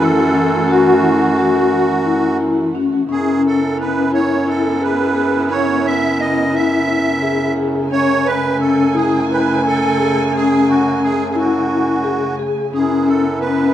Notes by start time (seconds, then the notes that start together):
Already playing: F#2 E3 A3 F#4
0.00 E4 A4
0.34 C#4
0.68 F#4
1.03 E4
1.38 F#4
2.06 E4
2.41 E4
2.75 C#4
3.09 F#2 C#3 B3 C#4 E4 G#4
3.47 A4
3.78 C#4 B4
4.13 E4 C#5
4.46 E4 A4
4.81 G#4 B4
5.15 G#4
5.49 C#4 C#5
5.86 E5
6.19 C#4 D#5
6.53 E4 E5
6.88 E4
7.22 G#4
7.56 G#4
7.91 F#2 A3 C#4 C#5 G#5
8.26 B4
8.60 C#4 A4
8.94 E4 G#4
9.29 E4 B4
9.64 A4 G#5
9.97 G#4
10.26 A4
10.32 C#4 G#4
10.69 F#4
11.00 C#4 G#4
11.30 G#4
11.35 E4 F#4
11.69 E4
12.04 G#4
12.39 G#4
12.73 F#2 B3 C#4 E4 G#4
13.07 A4
13.41 C#4 B4